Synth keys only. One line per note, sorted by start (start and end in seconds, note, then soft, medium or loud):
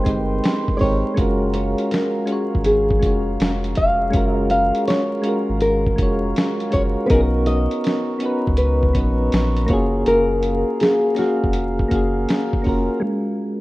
0.00 0.04 G#3 medium
0.00 0.63 G#3 medium
0.00 0.06 C4 medium
0.00 0.07 D#4 medium
0.00 0.09 G4 medium
0.00 1.19 B4 medium
0.00 0.11 C5 medium
0.06 0.63 C4 medium
0.06 0.64 D#4 medium
0.06 0.65 G4 medium
0.11 0.66 C5 medium
0.78 1.09 G#3 medium
0.78 1.10 C4 medium
0.78 1.10 D#4 medium
0.83 1.11 G4 medium
0.83 1.12 A#4 medium
1.14 1.96 G#3 medium
1.14 1.97 C#4 medium
1.14 1.98 F4 medium
1.19 1.99 F#4 medium
1.19 2.00 A#4 medium
2.26 2.85 G#3 medium
2.26 2.85 C#4 medium
2.26 2.86 F4 medium
2.31 2.87 F#4 medium
2.31 2.88 C#5 medium
2.99 3.82 G#3 medium
2.99 3.82 C#4 medium
2.99 3.83 F4 medium
3.04 3.84 F#4 medium
3.04 3.85 C#5 medium
4.10 4.93 G#3 medium
4.10 4.93 C#4 medium
4.10 4.94 F4 medium
4.15 4.95 F#4 medium
4.15 4.96 A#4 loud
5.22 5.81 G#3 medium
5.22 5.82 C#4 medium
5.22 5.83 F4 medium
5.27 5.83 F#4 medium
5.27 5.84 A#4 medium
5.96 6.55 G#3 medium
5.96 6.56 C#4 medium
5.96 6.57 F4 medium
6.01 6.58 F#4 medium
6.01 6.58 C#5 medium
6.71 7.02 G#3 medium
6.71 7.02 C#4 medium
6.71 7.03 F4 medium
6.76 7.04 F#4 medium
6.76 7.05 A#4 medium
7.07 7.89 B3 medium
7.07 7.90 C#4 medium
7.07 7.91 D#4 medium
7.13 7.92 F#4 medium
7.13 7.21 G#4 medium
7.21 7.96 A#4 loud
8.19 8.77 B3 medium
8.19 8.78 C#4 medium
8.19 8.79 D#4 medium
8.24 8.80 F#4 medium
8.24 8.81 B4 medium
8.93 9.68 B3 medium
8.93 9.67 C#4 medium
8.93 9.70 D#4 medium
8.98 9.70 F#4 medium
8.98 9.72 B4 medium
9.66 10.89 A#3 medium
9.66 10.90 C#4 medium
9.66 10.90 F4 medium
9.71 10.91 F#4 medium
9.71 10.92 G#4 medium
11.15 11.74 A#3 medium
11.15 11.75 C#4 medium
11.15 11.75 F5 medium
11.20 11.76 F#4 medium
11.20 11.77 G#4 medium
11.88 12.47 A#3 medium
11.88 12.48 C#4 medium
11.88 12.49 F5 medium
11.93 12.50 F#4 medium
11.93 12.51 G#4 medium
12.62 12.94 A#3 medium
12.62 12.94 C#4 medium
12.62 12.95 F4 medium
12.67 12.96 F#4 medium
12.67 12.97 A#4 medium
13.00 13.61 G#3 loud
13.00 13.61 C#4 medium
13.00 13.61 F4 medium
13.07 13.61 A#4 loud